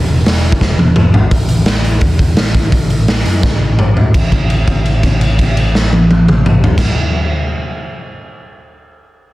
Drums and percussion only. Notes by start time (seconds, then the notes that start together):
0.26 snare, open hi-hat
0.52 kick
0.61 kick, snare
0.79 high tom
0.96 mid tom
1.14 floor tom
1.31 kick, open hi-hat
1.49 open hi-hat
1.66 snare, open hi-hat
1.84 open hi-hat
2.01 kick, open hi-hat
2.19 kick, open hi-hat
2.37 snare, open hi-hat
2.54 kick, open hi-hat
2.72 kick, open hi-hat
2.90 open hi-hat
3.08 snare, open hi-hat
3.26 open hi-hat
3.43 kick, snare
3.79 mid tom
3.97 floor tom
4.14 kick, crash
4.32 kick, crash
4.50 crash
4.67 kick, crash
4.85 crash
5.03 kick, crash
5.21 crash
5.39 kick, crash
5.57 crash
5.75 snare
5.93 high tom
6.11 high tom
6.28 mid tom
6.46 mid tom
6.64 floor tom
6.78 kick, snare, crash